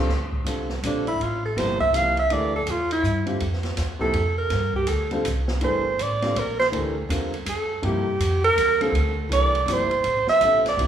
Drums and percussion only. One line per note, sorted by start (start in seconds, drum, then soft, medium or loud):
0.09 snare soft
0.32 kick soft
0.46 hi-hat pedal medium
0.46 ride medium
0.69 snare soft
0.83 hi-hat pedal medium
0.83 ride medium
1.07 ride soft
1.21 ride medium
1.57 snare soft
1.57 ride medium
1.81 kick soft
1.94 hi-hat pedal medium
1.94 ride medium
2.17 ride soft
2.30 ride medium
2.67 hi-hat pedal soft
2.67 ride medium
2.91 ride medium
3.04 hi-hat pedal medium
3.27 ride soft
3.40 ride medium
3.53 snare soft
3.63 snare soft
3.63 ride soft
3.77 snare soft
3.77 hi-hat pedal medium
3.77 ride medium
4.00 kick soft
4.13 ride medium
4.50 snare soft
4.50 ride medium
4.74 kick soft
4.87 hi-hat pedal medium
4.87 ride medium
5.11 ride soft
5.25 hi-hat pedal medium
5.25 ride medium
5.48 snare soft
5.61 ride medium
5.99 hi-hat pedal soft
5.99 ride medium
6.22 snare soft
6.22 ride soft
6.36 ride medium
6.60 snare soft
6.73 ride medium
7.10 hi-hat pedal medium
7.10 ride medium
7.34 ride soft
7.46 hi-hat pedal medium
7.46 ride medium
7.83 ride medium
8.20 hi-hat pedal medium
8.20 ride medium
8.44 ride soft
8.58 hi-hat pedal medium
8.58 ride medium
8.81 ride soft
8.95 ride medium
9.32 hi-hat pedal medium
9.32 ride medium
9.55 ride soft
9.68 hi-hat pedal medium
9.68 ride medium
9.91 ride soft
10.04 ride medium
10.27 snare soft
10.41 hi-hat pedal medium
10.41 ride medium
10.66 snare soft
10.66 ride soft
10.79 ride medium